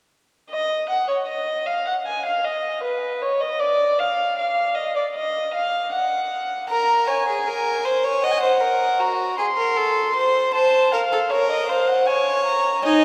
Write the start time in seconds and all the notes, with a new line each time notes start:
0.50 D#5
0.89 F#5
1.08 C#5
1.27 D#5
1.66 F5
1.86 F#5
2.06 G#5
2.26 F5
2.45 D#5
2.83 B4
3.22 C#5
3.41 D#5
3.60 D5
4.00 F5
4.38 F5
4.75 D#5
4.96 D5
5.15 D#5
5.54 F5
5.93 F#5
6.69 A#4 A#5
7.07 C#5 G#5
7.28 G#4
7.47 A#4
7.85 C5
8.04 C#5
8.24 D#5 F#5
8.31 G#5
8.38 F#5
8.43 C5
8.61 A#4
9.00 F#4 A#5
9.38 G#4 C6
9.57 A#4
9.77 A4
10.15 C5
10.54 C5 A5
10.92 A#4 F5
11.12 A4
11.30 A#4 C#5
11.50 D#5
11.68 C5 F5
11.87 F#5
12.07 C#5 G#5
12.45 A#5
12.84 D#4 D#5 G#5